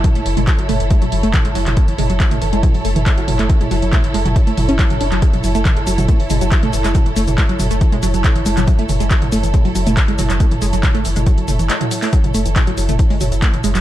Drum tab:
HH |xxoxxxoxxxoxxxox|xxoxxxoxxooxxxox|xxoxxxoxxxoxxxox|xxoxxxoxxooxxxox|
SH |----------------|----------------|----------------|x-xxx-xxx-xxx-xx|
CP |----x-------x--x|----x-------x--x|----x-------x--x|----x-------x--x|
T2 |o--o--o--o--o--o|--o--o--o--o--o-|-o--o--o--o--o--|-o--o--o--o--o--|
BD |o---o---o---o---|o---o---o---o---|o---o---o---o---|o---o---o---o---|

HH |xxoxxxoxxxoxxxox|xxoxxxoxxooxxxox|xxoxxxoxxxoxxxoo|xxoxxxoxxooxxxox|
SH |x-xxx-xxx-xxx-xx|x-xxx-xxx-xxx-xx|x-xxx-xxx-xxx-xx|x-xxx-xxx-xxx-xx|
CP |----x-------x--x|----x-------x--x|----x-------x--x|----x-------x--x|
T2 |o--o--o--o--o--o|--o--o--o--o--o-|-o--o--o--o--o--|-o--o--o--o--o--|
BD |o---o---o---o---|o---o---o---o---|o---o---o-------|o---o---o---o---|